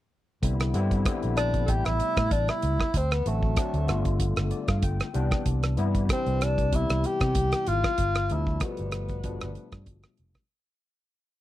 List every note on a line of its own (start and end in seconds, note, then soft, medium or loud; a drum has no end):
0.42 0.73 C2 medium
0.42 0.72 D3 medium
0.42 0.72 G3 medium
0.42 0.73 B3 medium
0.42 0.73 C4 medium
0.42 0.73 E4 medium
0.42 kick medium
0.42 closed hi-hat medium
0.60 cross-stick medium
0.60 closed hi-hat soft
0.73 1.04 G2 medium
0.73 1.04 D3 medium
0.73 1.04 G3 medium
0.73 1.04 B3 medium
0.73 1.04 C4 medium
0.73 1.04 E4 medium
0.73 closed hi-hat medium
0.91 kick medium
0.91 closed hi-hat soft
1.05 1.65 D3 medium
1.05 1.65 G3 medium
1.05 1.65 B3 medium
1.05 1.65 C4 medium
1.05 1.65 E4 medium
1.05 kick loud
1.05 cross-stick medium
1.05 closed hi-hat medium
1.23 1.67 A#1 medium
1.23 closed hi-hat soft
1.37 1.67 D4 medium
1.37 cross-stick medium
1.37 closed hi-hat medium
1.54 kick medium
1.54 closed hi-hat soft
1.66 1.85 A1 medium
1.66 2.86 C3 medium
1.66 2.87 G3 medium
1.66 2.87 A3 medium
1.66 2.87 B3 medium
1.66 2.87 E4 medium
1.66 1.87 G4 medium
1.66 1.71 A4 medium
1.66 kick medium
1.66 closed hi-hat medium
1.85 2.00 A1 medium
1.85 2.33 E4 loud
1.85 cross-stick medium
1.85 closed hi-hat soft
2.00 closed hi-hat medium
2.17 2.30 A2 medium
2.17 kick medium
2.17 cross-stick medium
2.17 closed hi-hat soft
2.31 2.48 A1 medium
2.31 2.50 D4 medium
2.31 kick loud
2.31 closed hi-hat medium
2.48 2.98 E4 medium
2.48 cross-stick medium
2.48 closed hi-hat soft
2.62 2.79 C#2 medium
2.62 closed hi-hat medium
2.80 kick medium
2.80 cross-stick medium
2.94 3.24 D2 medium
2.94 3.14 C4 medium
2.94 kick medium
2.94 closed hi-hat medium
3.11 3.29 B3 medium
3.11 cross-stick medium
3.11 closed hi-hat soft
3.25 3.56 A1 medium
3.25 3.55 D3 medium
3.25 3.55 F#3 medium
3.25 3.56 A3 medium
3.25 4.22 A3 medium
3.25 3.56 C4 medium
3.25 3.56 F#4 medium
3.25 closed hi-hat medium
3.43 kick medium
3.56 3.86 D3 medium
3.56 3.89 F#3 medium
3.56 3.87 A3 medium
3.56 3.89 C4 medium
3.56 3.89 D4 medium
3.56 kick loud
3.56 cross-stick medium
3.56 closed hi-hat medium
3.73 3.87 D2 medium
3.73 closed hi-hat soft
3.87 4.35 G1 medium
3.87 5.06 D3 medium
3.87 5.07 G3 medium
3.87 5.07 A3 medium
3.87 5.07 B3 medium
3.87 5.07 F4 medium
3.87 cross-stick medium
3.87 closed hi-hat soft
4.05 kick medium
4.05 closed hi-hat soft
4.20 kick medium
4.20 closed hi-hat medium
4.36 4.51 G1 medium
4.36 cross-stick medium
4.36 closed hi-hat soft
4.51 4.67 D5 medium
4.51 closed hi-hat medium
4.68 4.82 G2 medium
4.68 4.82 F5 medium
4.68 kick medium
4.68 cross-stick medium
4.68 closed hi-hat soft
4.82 4.99 G1 medium
4.82 5.13 G5 medium
4.82 kick medium
4.82 closed hi-hat medium
5.00 cross-stick medium
5.00 closed hi-hat soft
5.13 5.31 C2 medium
5.13 5.73 C3 medium
5.13 5.74 E3 medium
5.13 5.74 G3 medium
5.13 5.74 B3 medium
5.13 5.75 D4 medium
5.13 5.44 G5 medium
5.13 closed hi-hat medium
5.31 kick medium
5.31 cross-stick medium
5.31 closed hi-hat soft
5.46 5.76 C2 medium
5.46 kick medium
5.46 closed hi-hat medium
5.63 cross-stick medium
5.63 closed hi-hat soft
5.76 6.08 G2 medium
5.76 6.07 C3 medium
5.76 6.07 E3 medium
5.76 6.07 G3 medium
5.76 6.08 B3 medium
5.76 6.08 E4 medium
5.76 closed hi-hat medium
5.95 kick medium
5.95 closed hi-hat soft
6.09 6.69 C3 medium
6.09 6.69 E3 medium
6.09 6.69 G3 medium
6.09 6.45 C4 medium
6.09 6.70 D4 medium
6.09 6.69 B4 medium
6.09 kick loud
6.09 cross-stick medium
6.09 closed hi-hat medium
6.26 6.86 C2 medium
6.26 closed hi-hat soft
6.41 6.77 D4 medium
6.41 cross-stick medium
6.41 closed hi-hat medium
6.58 kick medium
6.58 closed hi-hat soft
6.72 7.91 C3 medium
6.72 7.91 E3 medium
6.72 7.91 G3 medium
6.72 7.91 B3 medium
6.72 7.92 E4 medium
6.72 7.08 E4 medium
6.72 kick medium
6.72 closed hi-hat medium
6.90 7.03 C2 medium
6.90 cross-stick medium
6.90 closed hi-hat soft
7.04 7.70 G4 medium
7.04 closed hi-hat medium
7.20 7.35 C3 medium
7.20 kick medium
7.20 cross-stick medium
7.20 closed hi-hat soft
7.35 7.52 C2 medium
7.35 kick medium
7.35 closed hi-hat medium
7.52 cross-stick medium
7.52 closed hi-hat soft
7.67 7.83 G#1 medium
7.67 8.34 F4 loud
7.67 closed hi-hat medium
7.84 kick medium
7.84 cross-stick medium
7.98 8.28 G1 medium
7.98 kick medium
7.98 closed hi-hat medium
8.15 cross-stick medium
8.15 closed hi-hat soft
8.30 8.60 D2 medium
8.30 8.59 B2 medium
8.30 8.60 F3 medium
8.30 8.60 G3 medium
8.30 8.60 A3 medium
8.30 8.60 D4 medium
8.30 8.65 E4 medium
8.30 closed hi-hat medium
8.47 kick medium
8.60 9.20 B2 medium
8.60 9.20 F3 medium
8.60 9.21 G3 medium
8.60 9.21 A3 medium
8.60 9.88 B3 medium
8.60 9.21 B3 medium
8.60 kick loud
8.60 cross-stick medium
8.60 closed hi-hat medium
8.77 9.38 G1 medium
8.77 closed hi-hat soft
8.91 cross-stick medium
8.91 closed hi-hat medium
9.09 kick medium
9.09 closed hi-hat soft
9.23 10.42 B2 medium
9.23 10.42 F3 medium
9.23 10.42 G3 medium
9.23 10.43 A3 medium
9.23 10.43 D4 medium
9.23 kick medium
9.23 closed hi-hat medium
9.41 9.56 G1 medium
9.41 cross-stick medium
9.41 closed hi-hat soft
9.55 closed hi-hat medium
9.72 9.86 G2 medium
9.72 kick medium
9.72 cross-stick medium
9.72 closed hi-hat soft
9.86 10.03 G1 medium
9.86 kick loud
9.86 closed hi-hat medium
10.03 cross-stick medium
10.03 closed hi-hat soft
10.17 10.35 F1 medium
10.17 closed hi-hat medium
10.34 kick medium
10.34 cross-stick medium
10.34 closed hi-hat soft